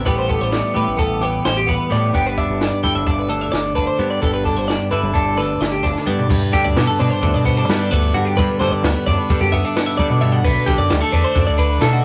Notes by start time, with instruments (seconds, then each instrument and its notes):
0.05 fingered electric bass A1, clean electric guitar A2 E3 G3 B3 G4 B4, kick, closed hi-hat
0.18 clean electric guitar C5
0.28 clean electric guitar B3 A4, kick, closed hi-hat
0.41 fingered electric bass A1, clean electric guitar C5
0.52 clean electric guitar D5, snare, closed hi-hat
0.74 fingered electric bass A2, clean electric guitar E3 G4 B4, closed hi-hat
0.88 fingered electric bass A1
0.97 fingered electric bass A1, clean electric guitar B3 A4, kick, snare, closed hi-hat
1.21 clean electric guitar E2 G4 B4, closed hi-hat
1.45 fingered electric bass A1, clean electric guitar C5, snare, closed hi-hat
1.57 clean electric guitar G4
1.67 fingered electric bass A1, clean electric guitar B3 B4, kick, closed hi-hat
1.90 clean electric guitar A2 G3 D5, fingered electric bass A2, snare, closed hi-hat
2.13 fingered electric bass G1, clean electric guitar G2 B3 G4, kick, closed hi-hat
2.27 clean electric guitar B4
2.38 clean electric guitar D4 E5, kick, closed hi-hat
2.50 fingered electric bass G1
2.61 clean electric guitar D5, snare, closed hi-hat
2.83 fingered electric bass G2, clean electric guitar D3 E4 G5, kick, snare, closed hi-hat
2.95 fingered electric bass G1, clean electric guitar E5
3.06 fingered electric bass G1, clean electric guitar D4 D5, kick, closed hi-hat
3.19 clean electric guitar B4
3.28 clean electric guitar D2 A4 D5, closed hi-hat
3.41 clean electric guitar E5
3.52 fingered electric bass G1, clean electric guitar D5, snare, closed hi-hat
3.75 fingered electric bass G1, clean electric guitar D4 B4, kick, closed hi-hat
3.87 clean electric guitar C5
3.99 clean electric guitar G2 B3, fingered electric bass G2, closed hi-hat
4.11 clean electric guitar D5
4.22 fingered electric bass G1, clean electric guitar G2 B3 A4, kick, closed hi-hat
4.34 clean electric guitar B4
4.44 clean electric guitar D4 A4, kick, snare, closed hi-hat
4.56 fingered electric bass G1, clean electric guitar C5
4.68 clean electric guitar D5, snare, closed hi-hat
4.91 fingered electric bass G2, clean electric guitar D3 E4 B4, closed hi-hat
5.03 fingered electric bass G1
5.14 fingered electric bass G1, clean electric guitar D4 A4, kick, closed hi-hat
5.36 clean electric guitar D2 A4 B4, snare, closed hi-hat
5.61 fingered electric bass G1, clean electric guitar D5, snare, closed hi-hat
5.72 clean electric guitar G4
5.83 fingered electric bass G1, clean electric guitar D4 B4, kick, snare, closed hi-hat
5.96 snare
6.06 clean electric guitar G2 B3 D5, fingered electric bass G2, mid tom
6.19 floor tom
6.29 clean electric guitar G2 B4, fingered electric bass G2, kick, crash
6.53 fingered electric bass G2, clean electric guitar D3 G4, kick, ride
6.64 fingered electric bass D2, clean electric guitar D5
6.76 fingered electric bass B2, clean electric guitar B3, snare, ride
6.87 clean electric guitar A4
6.99 fingered electric bass B2, clean electric guitar D4 B4, ride
7.10 clean electric guitar C5
7.22 fingered electric bass D2, clean electric guitar D3, kick, ride
7.34 fingered electric bass B2, clean electric guitar D5
7.45 clean electric guitar B3 C5, kick, ride
7.57 clean electric guitar D4
7.68 fingered electric bass G3, clean electric guitar B3 B4, snare, ride
7.80 clean electric guitar G4
7.91 fingered electric bass D2, clean electric guitar D3 B4, kick, ride
8.14 clean electric guitar G2 F#4, fingered electric bass G2, ride
8.25 clean electric guitar G4
8.37 clean electric guitar G2 B4, fingered electric bass G2, kick, ride
8.59 fingered electric bass G2, clean electric guitar D3 C5, snare, ride
8.71 fingered electric bass G2, clean electric guitar D5
8.83 fingered electric bass D2, clean electric guitar B3, snare, ride
8.94 clean electric guitar B4
9.07 fingered electric bass F#2, clean electric guitar D4 D5, kick, ride
9.18 clean electric guitar B4
9.30 clean electric guitar D3, fingered electric bass G3, kick, ride
9.41 fingered electric bass F#2, clean electric guitar G4
9.52 clean electric guitar B3 E5, kick, ride
9.65 clean electric guitar D4
9.76 clean electric guitar B3 D5, snare, ride
9.86 clean electric guitar E5
9.97 clean electric guitar D3 D5, fingered electric bass G3, kick, ride
10.10 fingered electric bass B2
10.21 clean electric guitar G2 E5, ride
10.32 clean electric guitar F#5
10.44 fingered electric bass B1, clean electric guitar B2 B4, kick, crash
10.66 fingered electric bass B1, clean electric guitar D3 G4, kick, snare, ride
10.78 fingered electric bass F#2, clean electric guitar D5
10.90 fingered electric bass D2, clean electric guitar G3, snare, ride
11.01 clean electric guitar A3 A4
11.12 fingered electric bass E2, clean electric guitar D4 B4, ride
11.24 clean electric guitar C5
11.35 fingered electric bass F#2, clean electric guitar D3, kick, snare, ride
11.47 fingered electric bass D2, clean electric guitar D5
11.58 clean electric guitar D4 B4, kick, ride
11.81 fingered electric bass B2, clean electric guitar A3 A4, snare, ride
11.93 clean electric guitar F#4